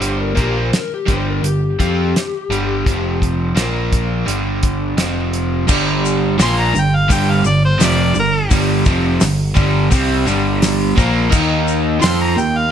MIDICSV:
0, 0, Header, 1, 8, 480
1, 0, Start_track
1, 0, Key_signature, -2, "minor"
1, 0, Tempo, 706714
1, 8, Time_signature, 4, 2, 24, 8
1, 8636, End_track
2, 0, Start_track
2, 0, Title_t, "Harmonica"
2, 0, Program_c, 0, 22
2, 4359, Note_on_c, 0, 84, 104
2, 4475, Note_on_c, 0, 82, 91
2, 4485, Note_off_c, 0, 84, 0
2, 4618, Note_on_c, 0, 79, 82
2, 4628, Note_off_c, 0, 82, 0
2, 4721, Note_on_c, 0, 77, 98
2, 4731, Note_off_c, 0, 79, 0
2, 4838, Note_on_c, 0, 79, 84
2, 4848, Note_off_c, 0, 77, 0
2, 4964, Note_on_c, 0, 77, 80
2, 4974, Note_off_c, 0, 79, 0
2, 5063, Note_off_c, 0, 77, 0
2, 5067, Note_on_c, 0, 74, 92
2, 5176, Note_off_c, 0, 74, 0
2, 5192, Note_on_c, 0, 72, 102
2, 5327, Note_on_c, 0, 74, 91
2, 5337, Note_off_c, 0, 72, 0
2, 5547, Note_off_c, 0, 74, 0
2, 5564, Note_on_c, 0, 70, 104
2, 5784, Note_off_c, 0, 70, 0
2, 8160, Note_on_c, 0, 84, 102
2, 8274, Note_off_c, 0, 84, 0
2, 8293, Note_on_c, 0, 82, 86
2, 8418, Note_on_c, 0, 79, 93
2, 8429, Note_off_c, 0, 82, 0
2, 8538, Note_on_c, 0, 77, 114
2, 8549, Note_off_c, 0, 79, 0
2, 8636, Note_off_c, 0, 77, 0
2, 8636, End_track
3, 0, Start_track
3, 0, Title_t, "Electric slide guitar"
3, 0, Program_c, 1, 29
3, 12, Note_on_c, 1, 72, 82
3, 127, Note_off_c, 1, 72, 0
3, 139, Note_on_c, 1, 70, 75
3, 251, Note_off_c, 1, 70, 0
3, 274, Note_on_c, 1, 67, 82
3, 379, Note_off_c, 1, 67, 0
3, 383, Note_on_c, 1, 72, 71
3, 494, Note_off_c, 1, 72, 0
3, 511, Note_on_c, 1, 70, 66
3, 618, Note_off_c, 1, 70, 0
3, 637, Note_on_c, 1, 67, 82
3, 742, Note_off_c, 1, 67, 0
3, 752, Note_on_c, 1, 72, 83
3, 859, Note_off_c, 1, 72, 0
3, 875, Note_on_c, 1, 70, 70
3, 979, Note_on_c, 1, 67, 75
3, 981, Note_off_c, 1, 70, 0
3, 1208, Note_off_c, 1, 67, 0
3, 1216, Note_on_c, 1, 67, 80
3, 2152, Note_off_c, 1, 67, 0
3, 8636, End_track
4, 0, Start_track
4, 0, Title_t, "Overdriven electric guitar"
4, 0, Program_c, 2, 29
4, 1, Note_on_c, 2, 43, 87
4, 5, Note_on_c, 2, 55, 99
4, 6, Note_on_c, 2, 50, 89
4, 234, Note_off_c, 2, 50, 0
4, 236, Note_off_c, 2, 55, 0
4, 236, Note_on_c, 2, 46, 95
4, 238, Note_off_c, 2, 43, 0
4, 239, Note_on_c, 2, 53, 94
4, 241, Note_on_c, 2, 58, 94
4, 477, Note_off_c, 2, 46, 0
4, 478, Note_off_c, 2, 53, 0
4, 479, Note_off_c, 2, 58, 0
4, 724, Note_on_c, 2, 43, 78
4, 727, Note_on_c, 2, 55, 93
4, 730, Note_on_c, 2, 50, 87
4, 962, Note_off_c, 2, 43, 0
4, 962, Note_off_c, 2, 50, 0
4, 964, Note_off_c, 2, 55, 0
4, 970, Note_on_c, 2, 50, 60
4, 971, Note_on_c, 2, 43, 56
4, 1165, Note_off_c, 2, 43, 0
4, 1165, Note_off_c, 2, 50, 0
4, 1217, Note_on_c, 2, 53, 75
4, 1223, Note_on_c, 2, 60, 86
4, 1224, Note_on_c, 2, 65, 85
4, 1449, Note_off_c, 2, 53, 0
4, 1453, Note_off_c, 2, 60, 0
4, 1453, Note_off_c, 2, 65, 0
4, 1703, Note_on_c, 2, 43, 73
4, 1704, Note_on_c, 2, 50, 83
4, 1711, Note_on_c, 2, 55, 88
4, 1933, Note_off_c, 2, 43, 0
4, 1934, Note_off_c, 2, 50, 0
4, 1938, Note_off_c, 2, 55, 0
4, 1945, Note_on_c, 2, 41, 82
4, 1953, Note_on_c, 2, 48, 91
4, 1956, Note_on_c, 2, 53, 96
4, 2407, Note_off_c, 2, 53, 0
4, 2409, Note_off_c, 2, 48, 0
4, 2412, Note_on_c, 2, 46, 74
4, 2415, Note_on_c, 2, 53, 91
4, 2416, Note_off_c, 2, 41, 0
4, 2419, Note_on_c, 2, 58, 88
4, 2888, Note_on_c, 2, 43, 81
4, 2890, Note_off_c, 2, 46, 0
4, 2891, Note_off_c, 2, 53, 0
4, 2893, Note_off_c, 2, 58, 0
4, 2895, Note_on_c, 2, 50, 86
4, 2897, Note_on_c, 2, 55, 80
4, 3368, Note_off_c, 2, 43, 0
4, 3372, Note_off_c, 2, 50, 0
4, 3373, Note_off_c, 2, 55, 0
4, 3377, Note_on_c, 2, 41, 76
4, 3379, Note_on_c, 2, 48, 75
4, 3387, Note_on_c, 2, 53, 94
4, 3848, Note_off_c, 2, 41, 0
4, 3851, Note_on_c, 2, 43, 86
4, 3854, Note_off_c, 2, 48, 0
4, 3858, Note_off_c, 2, 53, 0
4, 3860, Note_on_c, 2, 50, 103
4, 3863, Note_on_c, 2, 55, 111
4, 4330, Note_off_c, 2, 43, 0
4, 4330, Note_off_c, 2, 55, 0
4, 4332, Note_off_c, 2, 50, 0
4, 4333, Note_on_c, 2, 53, 93
4, 4335, Note_on_c, 2, 46, 95
4, 4339, Note_on_c, 2, 58, 99
4, 4570, Note_off_c, 2, 53, 0
4, 4571, Note_off_c, 2, 46, 0
4, 4573, Note_off_c, 2, 58, 0
4, 4575, Note_on_c, 2, 43, 65
4, 4581, Note_on_c, 2, 50, 70
4, 4770, Note_off_c, 2, 43, 0
4, 4773, Note_off_c, 2, 50, 0
4, 4811, Note_on_c, 2, 43, 95
4, 4813, Note_on_c, 2, 50, 101
4, 4821, Note_on_c, 2, 55, 99
4, 5041, Note_off_c, 2, 43, 0
4, 5049, Note_on_c, 2, 43, 66
4, 5050, Note_off_c, 2, 50, 0
4, 5054, Note_off_c, 2, 55, 0
4, 5057, Note_on_c, 2, 50, 74
4, 5247, Note_off_c, 2, 43, 0
4, 5251, Note_off_c, 2, 50, 0
4, 5292, Note_on_c, 2, 41, 99
4, 5295, Note_on_c, 2, 48, 106
4, 5297, Note_on_c, 2, 53, 95
4, 5529, Note_off_c, 2, 41, 0
4, 5530, Note_off_c, 2, 48, 0
4, 5531, Note_off_c, 2, 53, 0
4, 5531, Note_on_c, 2, 43, 72
4, 5536, Note_on_c, 2, 50, 68
4, 5727, Note_off_c, 2, 43, 0
4, 5730, Note_off_c, 2, 50, 0
4, 5788, Note_on_c, 2, 43, 99
4, 5789, Note_on_c, 2, 50, 102
4, 5794, Note_on_c, 2, 55, 106
4, 6015, Note_off_c, 2, 43, 0
4, 6016, Note_off_c, 2, 50, 0
4, 6018, Note_on_c, 2, 41, 92
4, 6019, Note_off_c, 2, 55, 0
4, 6022, Note_on_c, 2, 48, 89
4, 6023, Note_on_c, 2, 53, 103
4, 6247, Note_off_c, 2, 41, 0
4, 6249, Note_on_c, 2, 43, 62
4, 6252, Note_off_c, 2, 48, 0
4, 6253, Note_off_c, 2, 53, 0
4, 6257, Note_on_c, 2, 50, 65
4, 6445, Note_off_c, 2, 43, 0
4, 6448, Note_off_c, 2, 50, 0
4, 6483, Note_on_c, 2, 43, 88
4, 6487, Note_on_c, 2, 50, 104
4, 6496, Note_on_c, 2, 55, 104
4, 6718, Note_off_c, 2, 55, 0
4, 6722, Note_off_c, 2, 43, 0
4, 6723, Note_off_c, 2, 50, 0
4, 6726, Note_on_c, 2, 55, 101
4, 6728, Note_on_c, 2, 48, 95
4, 6733, Note_on_c, 2, 60, 102
4, 6963, Note_off_c, 2, 48, 0
4, 6963, Note_off_c, 2, 55, 0
4, 6966, Note_off_c, 2, 60, 0
4, 6966, Note_on_c, 2, 43, 89
4, 6971, Note_on_c, 2, 50, 98
4, 6971, Note_on_c, 2, 55, 104
4, 7440, Note_off_c, 2, 43, 0
4, 7443, Note_off_c, 2, 50, 0
4, 7443, Note_off_c, 2, 55, 0
4, 7446, Note_on_c, 2, 46, 96
4, 7451, Note_on_c, 2, 53, 106
4, 7454, Note_on_c, 2, 58, 110
4, 7670, Note_off_c, 2, 46, 0
4, 7671, Note_off_c, 2, 58, 0
4, 7672, Note_on_c, 2, 51, 95
4, 7677, Note_off_c, 2, 53, 0
4, 7679, Note_on_c, 2, 58, 107
4, 7680, Note_on_c, 2, 63, 102
4, 8149, Note_off_c, 2, 51, 0
4, 8151, Note_off_c, 2, 58, 0
4, 8152, Note_on_c, 2, 53, 97
4, 8154, Note_on_c, 2, 60, 89
4, 8155, Note_off_c, 2, 63, 0
4, 8160, Note_on_c, 2, 65, 113
4, 8391, Note_off_c, 2, 53, 0
4, 8392, Note_off_c, 2, 60, 0
4, 8394, Note_on_c, 2, 51, 75
4, 8395, Note_off_c, 2, 65, 0
4, 8396, Note_on_c, 2, 58, 81
4, 8590, Note_off_c, 2, 51, 0
4, 8591, Note_off_c, 2, 58, 0
4, 8636, End_track
5, 0, Start_track
5, 0, Title_t, "Picked electric bass"
5, 0, Program_c, 3, 34
5, 5, Note_on_c, 3, 31, 75
5, 231, Note_off_c, 3, 31, 0
5, 255, Note_on_c, 3, 34, 83
5, 477, Note_off_c, 3, 34, 0
5, 738, Note_on_c, 3, 31, 82
5, 960, Note_off_c, 3, 31, 0
5, 967, Note_on_c, 3, 31, 75
5, 1194, Note_off_c, 3, 31, 0
5, 1221, Note_on_c, 3, 41, 85
5, 1442, Note_off_c, 3, 41, 0
5, 1694, Note_on_c, 3, 31, 91
5, 1919, Note_off_c, 3, 31, 0
5, 1945, Note_on_c, 3, 29, 77
5, 2396, Note_off_c, 3, 29, 0
5, 2418, Note_on_c, 3, 34, 77
5, 2873, Note_off_c, 3, 34, 0
5, 2900, Note_on_c, 3, 31, 79
5, 3354, Note_off_c, 3, 31, 0
5, 3379, Note_on_c, 3, 29, 75
5, 3834, Note_off_c, 3, 29, 0
5, 3867, Note_on_c, 3, 31, 85
5, 4317, Note_off_c, 3, 31, 0
5, 4344, Note_on_c, 3, 34, 90
5, 4566, Note_off_c, 3, 34, 0
5, 4584, Note_on_c, 3, 31, 74
5, 4806, Note_off_c, 3, 31, 0
5, 4825, Note_on_c, 3, 31, 99
5, 5046, Note_off_c, 3, 31, 0
5, 5060, Note_on_c, 3, 31, 72
5, 5283, Note_off_c, 3, 31, 0
5, 5302, Note_on_c, 3, 29, 98
5, 5524, Note_off_c, 3, 29, 0
5, 5537, Note_on_c, 3, 31, 79
5, 5761, Note_off_c, 3, 31, 0
5, 5782, Note_on_c, 3, 31, 89
5, 6003, Note_off_c, 3, 31, 0
5, 6022, Note_on_c, 3, 29, 93
5, 6243, Note_off_c, 3, 29, 0
5, 6259, Note_on_c, 3, 31, 75
5, 6480, Note_off_c, 3, 31, 0
5, 6497, Note_on_c, 3, 31, 90
5, 6719, Note_off_c, 3, 31, 0
5, 6739, Note_on_c, 3, 36, 99
5, 6959, Note_off_c, 3, 36, 0
5, 6970, Note_on_c, 3, 31, 86
5, 7422, Note_off_c, 3, 31, 0
5, 7457, Note_on_c, 3, 34, 95
5, 7676, Note_off_c, 3, 34, 0
5, 7691, Note_on_c, 3, 39, 94
5, 8140, Note_off_c, 3, 39, 0
5, 8171, Note_on_c, 3, 41, 88
5, 8391, Note_off_c, 3, 41, 0
5, 8411, Note_on_c, 3, 39, 74
5, 8630, Note_off_c, 3, 39, 0
5, 8636, End_track
6, 0, Start_track
6, 0, Title_t, "Muted overdriven electric guitar strokes"
6, 484, Note_on_c, 9, 29, 54
6, 552, Note_off_c, 9, 29, 0
6, 1455, Note_on_c, 9, 29, 49
6, 1523, Note_off_c, 9, 29, 0
6, 8636, End_track
7, 0, Start_track
7, 0, Title_t, "Muted picked electric bass strokes"
7, 488, Note_on_c, 9, 29, 34
7, 556, Note_off_c, 9, 29, 0
7, 1453, Note_on_c, 9, 29, 37
7, 1521, Note_off_c, 9, 29, 0
7, 8636, End_track
8, 0, Start_track
8, 0, Title_t, "Drums"
8, 12, Note_on_c, 9, 42, 71
8, 80, Note_off_c, 9, 42, 0
8, 252, Note_on_c, 9, 42, 47
8, 253, Note_on_c, 9, 36, 75
8, 320, Note_off_c, 9, 42, 0
8, 321, Note_off_c, 9, 36, 0
8, 498, Note_on_c, 9, 42, 76
8, 500, Note_on_c, 9, 38, 109
8, 565, Note_off_c, 9, 42, 0
8, 567, Note_off_c, 9, 38, 0
8, 734, Note_on_c, 9, 42, 53
8, 735, Note_on_c, 9, 36, 78
8, 736, Note_on_c, 9, 38, 28
8, 802, Note_off_c, 9, 42, 0
8, 803, Note_off_c, 9, 36, 0
8, 804, Note_off_c, 9, 38, 0
8, 979, Note_on_c, 9, 42, 78
8, 1047, Note_off_c, 9, 42, 0
8, 1221, Note_on_c, 9, 36, 69
8, 1223, Note_on_c, 9, 42, 55
8, 1289, Note_off_c, 9, 36, 0
8, 1291, Note_off_c, 9, 42, 0
8, 1468, Note_on_c, 9, 42, 73
8, 1470, Note_on_c, 9, 38, 88
8, 1536, Note_off_c, 9, 42, 0
8, 1538, Note_off_c, 9, 38, 0
8, 1712, Note_on_c, 9, 42, 57
8, 1780, Note_off_c, 9, 42, 0
8, 1945, Note_on_c, 9, 36, 101
8, 1949, Note_on_c, 9, 42, 69
8, 2013, Note_off_c, 9, 36, 0
8, 2017, Note_off_c, 9, 42, 0
8, 2186, Note_on_c, 9, 36, 64
8, 2193, Note_on_c, 9, 42, 53
8, 2254, Note_off_c, 9, 36, 0
8, 2261, Note_off_c, 9, 42, 0
8, 2424, Note_on_c, 9, 42, 84
8, 2426, Note_on_c, 9, 38, 95
8, 2492, Note_off_c, 9, 42, 0
8, 2494, Note_off_c, 9, 38, 0
8, 2666, Note_on_c, 9, 36, 76
8, 2666, Note_on_c, 9, 42, 62
8, 2734, Note_off_c, 9, 36, 0
8, 2734, Note_off_c, 9, 42, 0
8, 2907, Note_on_c, 9, 42, 81
8, 2975, Note_off_c, 9, 42, 0
8, 3143, Note_on_c, 9, 42, 61
8, 3146, Note_on_c, 9, 36, 81
8, 3211, Note_off_c, 9, 42, 0
8, 3214, Note_off_c, 9, 36, 0
8, 3381, Note_on_c, 9, 42, 75
8, 3383, Note_on_c, 9, 38, 96
8, 3449, Note_off_c, 9, 42, 0
8, 3451, Note_off_c, 9, 38, 0
8, 3623, Note_on_c, 9, 42, 53
8, 3691, Note_off_c, 9, 42, 0
8, 3860, Note_on_c, 9, 82, 97
8, 3863, Note_on_c, 9, 49, 106
8, 3866, Note_on_c, 9, 36, 105
8, 3928, Note_off_c, 9, 82, 0
8, 3931, Note_off_c, 9, 49, 0
8, 3934, Note_off_c, 9, 36, 0
8, 4111, Note_on_c, 9, 82, 75
8, 4179, Note_off_c, 9, 82, 0
8, 4342, Note_on_c, 9, 46, 60
8, 4344, Note_on_c, 9, 38, 120
8, 4347, Note_on_c, 9, 82, 95
8, 4410, Note_off_c, 9, 46, 0
8, 4412, Note_off_c, 9, 38, 0
8, 4415, Note_off_c, 9, 82, 0
8, 4587, Note_on_c, 9, 82, 68
8, 4654, Note_off_c, 9, 82, 0
8, 4824, Note_on_c, 9, 36, 112
8, 4826, Note_on_c, 9, 46, 62
8, 4826, Note_on_c, 9, 82, 99
8, 4892, Note_off_c, 9, 36, 0
8, 4894, Note_off_c, 9, 46, 0
8, 4894, Note_off_c, 9, 82, 0
8, 5057, Note_on_c, 9, 82, 87
8, 5125, Note_off_c, 9, 82, 0
8, 5301, Note_on_c, 9, 82, 103
8, 5303, Note_on_c, 9, 46, 58
8, 5305, Note_on_c, 9, 38, 106
8, 5369, Note_off_c, 9, 82, 0
8, 5371, Note_off_c, 9, 46, 0
8, 5373, Note_off_c, 9, 38, 0
8, 5533, Note_on_c, 9, 82, 73
8, 5601, Note_off_c, 9, 82, 0
8, 5778, Note_on_c, 9, 82, 95
8, 5782, Note_on_c, 9, 36, 108
8, 5785, Note_on_c, 9, 46, 62
8, 5846, Note_off_c, 9, 82, 0
8, 5849, Note_off_c, 9, 36, 0
8, 5853, Note_off_c, 9, 46, 0
8, 6012, Note_on_c, 9, 82, 74
8, 6019, Note_on_c, 9, 36, 105
8, 6080, Note_off_c, 9, 82, 0
8, 6087, Note_off_c, 9, 36, 0
8, 6252, Note_on_c, 9, 82, 99
8, 6255, Note_on_c, 9, 46, 62
8, 6257, Note_on_c, 9, 38, 116
8, 6320, Note_off_c, 9, 82, 0
8, 6323, Note_off_c, 9, 46, 0
8, 6325, Note_off_c, 9, 38, 0
8, 6491, Note_on_c, 9, 82, 63
8, 6498, Note_on_c, 9, 36, 102
8, 6559, Note_off_c, 9, 82, 0
8, 6566, Note_off_c, 9, 36, 0
8, 6733, Note_on_c, 9, 82, 102
8, 6736, Note_on_c, 9, 46, 70
8, 6738, Note_on_c, 9, 36, 112
8, 6801, Note_off_c, 9, 82, 0
8, 6804, Note_off_c, 9, 46, 0
8, 6806, Note_off_c, 9, 36, 0
8, 6977, Note_on_c, 9, 82, 80
8, 7045, Note_off_c, 9, 82, 0
8, 7214, Note_on_c, 9, 46, 56
8, 7216, Note_on_c, 9, 38, 103
8, 7219, Note_on_c, 9, 82, 93
8, 7282, Note_off_c, 9, 46, 0
8, 7284, Note_off_c, 9, 38, 0
8, 7287, Note_off_c, 9, 82, 0
8, 7456, Note_on_c, 9, 36, 104
8, 7460, Note_on_c, 9, 82, 61
8, 7523, Note_off_c, 9, 36, 0
8, 7528, Note_off_c, 9, 82, 0
8, 7688, Note_on_c, 9, 49, 97
8, 7694, Note_on_c, 9, 36, 99
8, 7694, Note_on_c, 9, 82, 90
8, 7756, Note_off_c, 9, 49, 0
8, 7762, Note_off_c, 9, 36, 0
8, 7762, Note_off_c, 9, 82, 0
8, 7931, Note_on_c, 9, 82, 60
8, 7999, Note_off_c, 9, 82, 0
8, 8165, Note_on_c, 9, 82, 94
8, 8175, Note_on_c, 9, 46, 64
8, 8177, Note_on_c, 9, 38, 124
8, 8232, Note_off_c, 9, 82, 0
8, 8242, Note_off_c, 9, 46, 0
8, 8244, Note_off_c, 9, 38, 0
8, 8410, Note_on_c, 9, 82, 67
8, 8478, Note_off_c, 9, 82, 0
8, 8636, End_track
0, 0, End_of_file